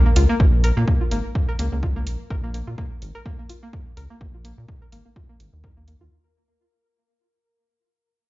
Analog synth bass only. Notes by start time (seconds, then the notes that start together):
0.16 C#2
0.40 A#1
0.77 A#2
1.11 G#1
1.59 C#2
1.72 C#2
2.07 A#1
2.30 A#1
2.67 A#2
3.02 G#1
3.97 C#2
4.21 A#1
4.58 A#2
4.92 G#1
5.40 G#1
5.53 D#2
6.01 D#2